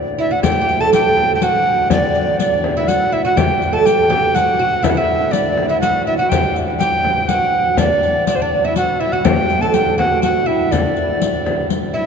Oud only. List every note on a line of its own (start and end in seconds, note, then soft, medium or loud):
0.00 0.15 D4 medium
0.18 0.30 E4 medium
0.31 0.43 F#4 medium
0.43 0.50 G4 medium
0.52 0.60 G4 medium
0.61 0.80 G4 medium
0.80 0.92 A4 medium
0.93 1.42 G4 medium
1.42 1.92 F#4 medium
1.91 2.38 D4 medium
2.39 2.77 D4 medium
2.77 2.88 E4 medium
2.88 3.12 F#4 medium
3.12 3.24 E4 medium
3.25 3.36 F#4 medium
3.37 3.72 G4 medium
3.73 3.85 A4 medium
3.85 4.09 G4 medium
4.10 4.34 G4 medium
4.35 4.58 F#4 medium
4.59 4.82 F#4 medium
4.83 4.96 E4 medium
4.97 5.34 E4 medium
5.31 5.70 D4 medium
5.69 5.82 E4 medium
5.83 6.07 F#4 medium
6.07 6.18 E4 medium
6.19 6.32 F#4 medium
6.32 6.66 G4 medium
6.80 7.30 G4 medium
7.30 7.79 F#4 medium
7.79 8.27 D4 medium
8.29 8.41 D4 medium
8.42 8.64 D4 medium
8.65 8.77 E4 medium
8.77 9.00 F#4 medium
9.00 9.13 E4 medium
9.13 9.24 F#4 medium
9.24 9.59 G4 medium
9.62 9.74 A4 medium
9.74 9.97 G4 medium
9.98 10.21 F#4 medium
10.22 10.45 F#4 medium
10.46 10.72 E4 medium
10.71 11.90 D4 medium
11.94 12.06 E4 medium